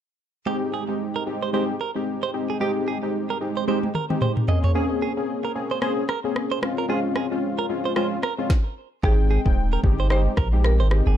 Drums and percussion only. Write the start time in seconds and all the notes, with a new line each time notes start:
3.68 high tom
3.83 high tom
3.95 mid tom
4.10 mid tom
4.21 mid tom
4.37 mid tom
4.48 floor tom
4.64 floor tom
5.82 cross-stick
6.09 cross-stick
6.36 cross-stick
6.63 cross-stick
7.16 cross-stick
7.96 cross-stick
8.23 cross-stick
8.50 kick, snare
9.03 kick
9.46 kick
9.84 kick
10.10 cross-stick
10.37 kick, cross-stick
10.64 cross-stick
10.91 cross-stick